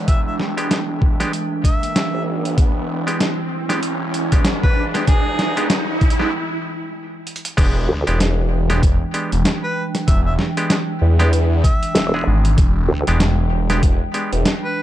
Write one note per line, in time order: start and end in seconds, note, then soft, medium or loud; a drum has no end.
0.00 0.86 E1 loud
0.00 6.29 E3 medium
0.00 6.29 G#3 medium
0.00 2.54 D4 medium
0.00 6.29 G5 medium
0.00 riser medium
0.08 0.20 E5 medium
0.08 kick loud
0.08 closed hi-hat medium
0.27 0.35 E5 medium
0.40 snare medium
0.57 0.79 G#3 medium
0.57 0.80 B3 medium
0.57 0.80 D4 medium
0.57 0.79 G4 medium
0.57 closed hi-hat medium
0.71 snare loud
0.71 closed hi-hat medium
0.88 1.17 E1 medium
1.02 kick loud
1.20 1.32 G#3 medium
1.20 1.32 B3 medium
1.20 1.32 D4 medium
1.20 1.32 G4 loud
1.20 snare soft
1.20 closed hi-hat medium
1.33 closed hi-hat medium
1.64 2.27 E5 medium
1.64 kick loud
1.64 closed hi-hat medium
1.83 closed hi-hat medium
1.96 snare loud
1.96 closed hi-hat medium
2.14 2.56 G#1 loud
2.45 closed hi-hat medium
2.58 3.04 E1 medium
2.58 6.29 E4 medium
2.58 kick loud
2.58 closed hi-hat medium
3.07 3.19 G#3 medium
3.07 3.19 B3 medium
3.07 3.19 D4 medium
3.07 3.19 G4 medium
3.07 closed hi-hat medium
3.21 snare loud
3.21 closed hi-hat medium
3.69 3.80 E1 medium
3.69 3.80 G#3 medium
3.69 3.80 B3 medium
3.69 3.80 D4 medium
3.69 3.80 G4 medium
3.69 snare soft
3.69 closed hi-hat medium
3.82 4.43 E1 medium
3.82 closed hi-hat medium
4.14 closed hi-hat medium
4.32 4.44 G#3 medium
4.32 4.44 B3 medium
4.32 4.44 D4 medium
4.32 4.44 G4 medium
4.32 kick loud
4.32 closed hi-hat medium
4.45 4.92 G#1 loud
4.45 snare loud
4.45 closed hi-hat medium
4.63 4.84 B4 medium
4.63 kick loud
4.94 5.85 E1 loud
4.94 5.05 G#3 medium
4.94 5.05 B3 medium
4.94 5.05 D4 medium
4.94 5.05 G4 medium
4.94 snare soft
4.94 closed hi-hat medium
5.07 5.70 G#4 loud
5.07 kick loud
5.07 closed hi-hat medium
5.39 snare medium
5.39 closed hi-hat soft
5.57 5.68 G#3 medium
5.57 5.68 B3 medium
5.57 5.68 D4 medium
5.57 5.68 G4 loud
5.57 closed hi-hat medium
5.70 snare loud
5.70 closed hi-hat medium
5.89 6.17 E1 medium
6.01 kick loud
6.01 closed hi-hat soft
6.10 closed hi-hat medium
6.19 6.33 D2 loud
6.19 6.30 G#3 medium
6.19 6.30 B3 medium
6.19 6.30 D4 medium
6.19 6.30 G4 loud
6.19 snare soft
7.27 closed hi-hat medium
7.36 closed hi-hat medium
7.45 closed hi-hat medium
7.57 7.87 E1 loud
7.57 14.83 E3 medium
7.57 8.00 G#3 loud
7.57 14.83 G#3 medium
7.57 8.00 B3 medium
7.57 8.00 D4 medium
7.57 14.83 D4 medium
7.57 8.00 G4 loud
7.57 14.83 G5 medium
7.57 kick loud
7.57 closed hi-hat medium
7.57 crash loud
7.89 8.04 D2 loud
8.07 8.98 E1 loud
8.07 8.19 G#3 medium
8.07 8.19 B3 medium
8.07 8.19 D4 medium
8.07 8.19 G4 loud
8.07 closed hi-hat medium
8.20 snare loud
8.20 closed hi-hat medium
8.70 8.82 G#3 medium
8.70 8.82 B3 medium
8.70 8.82 D4 medium
8.70 8.82 G4 loud
8.70 snare soft
8.70 closed hi-hat medium
8.83 kick loud
8.83 closed hi-hat medium
9.14 9.31 G#3 medium
9.14 9.31 B3 medium
9.14 9.31 D4 medium
9.14 9.31 G4 medium
9.14 closed hi-hat medium
9.32 9.43 E1 medium
9.32 closed hi-hat medium
9.45 snare loud
9.45 closed hi-hat medium
9.63 9.84 B4 loud
9.95 snare medium
9.95 closed hi-hat medium
10.08 10.37 E1 loud
10.08 10.19 E5 medium
10.08 kick loud
10.08 closed hi-hat medium
10.26 10.34 E5 medium
10.39 snare medium
10.57 10.80 G#3 medium
10.57 10.79 B3 medium
10.57 10.80 D4 medium
10.57 10.79 G4 medium
10.57 closed hi-hat medium
10.70 snare loud
10.70 closed hi-hat medium
11.01 11.62 E2 loud
11.19 11.32 G#3 loud
11.19 11.32 B3 medium
11.19 11.32 D4 medium
11.19 11.32 G4 loud
11.19 snare soft
11.19 closed hi-hat medium
11.33 closed hi-hat medium
11.64 12.27 E5 loud
11.64 kick loud
11.64 closed hi-hat medium
11.83 closed hi-hat medium
11.95 12.24 E1 loud
11.95 snare loud
11.95 closed hi-hat medium
12.14 13.03 G#3 medium
12.14 13.03 B3 medium
12.14 13.03 D4 medium
12.14 13.03 G#4 medium
12.27 12.56 G#1 medium
12.45 closed hi-hat medium
12.58 12.87 E1 loud
12.58 kick loud
12.58 closed hi-hat medium
12.88 13.04 D2 loud
13.07 13.98 E1 loud
13.07 13.20 G#3 medium
13.07 13.20 B3 medium
13.07 13.20 D4 medium
13.07 13.20 G4 loud
13.07 closed hi-hat medium
13.20 snare loud
13.20 closed hi-hat medium
13.70 13.82 G#3 medium
13.70 13.82 B3 medium
13.70 13.82 D4 medium
13.70 13.82 G4 loud
13.70 snare soft
13.70 closed hi-hat medium
13.83 kick loud
13.83 closed hi-hat medium
14.14 14.31 G#3 medium
14.14 14.31 B3 medium
14.14 14.31 D4 medium
14.14 14.31 G4 medium
14.14 closed hi-hat medium
14.32 14.43 E1 loud
14.32 closed hi-hat medium
14.46 snare loud
14.46 closed hi-hat medium
14.63 14.83 B4 loud